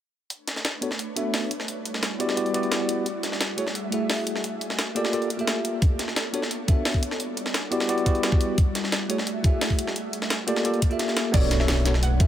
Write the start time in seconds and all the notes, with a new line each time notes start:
0.30 A3 D4 B4 C#5, closed hi-hat
0.47 snare, closed hi-hat
0.56 snare
0.65 snare, closed hi-hat
0.81 B3 D4 F#4 A4 C#5, closed hi-hat
0.91 snare
0.99 closed hi-hat
1.16 B3 D4 F#4 A4 E5, closed hi-hat
1.34 snare, closed hi-hat, open hi-hat
1.51 G3 E4 F#4 D5, closed hi-hat
1.60 snare
1.68 closed hi-hat
1.85 closed hi-hat
1.94 snare
2.03 snare, closed hi-hat
2.19 B3 E4 F#4 G4 D5, closed hi-hat
2.29 snare
2.36 B3 E4 F#4 G4 D5, closed hi-hat
2.46 closed hi-hat
2.53 B3 E4 F#4 G4 D5, closed hi-hat
2.63 closed hi-hat
2.72 snare, closed hi-hat
2.80 B3 E4 F#4 G4 D5
2.89 closed hi-hat
3.06 A3 G#4 E5, closed hi-hat
3.23 snare, closed hi-hat
3.32 snare
3.41 snare, closed hi-hat
3.57 A3 E4 F#4 G#4 C#5, closed hi-hat
3.67 snare
3.75 closed hi-hat
3.91 A3 E4 F#4 G#4 E5, closed hi-hat
4.09 snare, closed hi-hat, open hi-hat
4.27 closed hi-hat
4.36 snare
4.44 A#3 F4 G4 A4, closed hi-hat
4.61 closed hi-hat
4.70 snare
4.79 snare, closed hi-hat
4.95 A#3 F4 G4 A4 D5, closed hi-hat
5.05 snare
5.12 A#3 F4 G4 A4 D5, closed hi-hat
5.22 closed hi-hat
5.30 closed hi-hat
5.37 A#3 F4 G4 A4 E5, closed hi-hat
5.47 snare, closed hi-hat
5.65 closed hi-hat
5.82 B3 D4 C#5, kick, closed hi-hat
5.99 snare, closed hi-hat
6.08 snare
6.16 snare, closed hi-hat
6.33 B3 D4 F#4 A4 C#5, closed hi-hat
6.42 snare
6.51 closed hi-hat
6.67 B3 D4 F#4 A4 E5, kick, closed hi-hat
6.85 snare, closed hi-hat, open hi-hat
6.94 kick
7.03 G3 E4 F#4 D5, closed hi-hat
7.11 snare
7.20 closed hi-hat
7.37 closed hi-hat
7.46 snare
7.54 snare, closed hi-hat
7.71 B3 E4 F#4 G4 D5, closed hi-hat
7.80 snare
7.88 B3 E4 F#4 G4 D5, closed hi-hat
7.98 closed hi-hat
8.05 B3 E4 F#4 G4 D5, kick, closed hi-hat
8.15 closed hi-hat
8.23 snare, closed hi-hat
8.31 B3 E4 F#4 G4 D5, kick
8.41 closed hi-hat
8.58 A3 G#4 E5, kick, closed hi-hat
8.75 snare, closed hi-hat
8.84 snare
8.92 snare, closed hi-hat
9.09 A3 E4 F#4 G#4 C#5, closed hi-hat
9.18 snare
9.27 closed hi-hat
9.42 A3 E4 F#4 G#4 E5, kick, closed hi-hat
9.61 snare, closed hi-hat, open hi-hat
9.70 kick
9.79 closed hi-hat
9.87 snare
9.96 A#3 F4 G4 A4, closed hi-hat
10.13 closed hi-hat
10.22 snare
10.30 snare, closed hi-hat
10.47 A#3 F4 G4 A4 D5, closed hi-hat
10.56 snare
10.64 A#3 F4 G4 A4 D5, closed hi-hat
10.74 closed hi-hat
10.82 kick, closed hi-hat
10.89 A#3 F4 G4 A4 E5, closed hi-hat
10.99 snare, closed hi-hat
11.08 snare
11.17 snare, closed hi-hat
11.32 B1 A3 B3 D4 F#4 A4 B4 C#5 D5, kick, closed hi-hat, crash, impact
11.51 snare, closed hi-hat
11.60 E5, snare
11.68 snare, closed hi-hat
11.85 B3 D4 F#4 A4 C#5, snare, closed hi-hat
11.94 snare
12.03 F#5, closed hi-hat
12.19 E2 B3 D4 F#4 A4 E5, kick, closed hi-hat